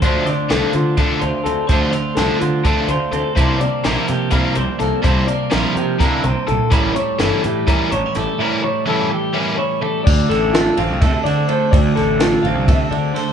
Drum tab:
CC |-------|-------|-------|-------|
RD |-------|-------|-------|-------|
HH |xxxxxxx|xxxxxxx|xxxxxxx|xxxxxxx|
SD |-oo----|--o----|--ooo-o|--o-o--|
BD |o---o--|o---o--|o---o--|o---o--|

CC |-------|-------|x------|-------|
RD |-------|-------|-xxxxxx|xxxxxxx|
HH |xxxxxxx|-------|-------|-------|
SD |--o---o|-------|-oo-oo-|-oo---o|
BD |o---o--|-------|o---o--|o---o--|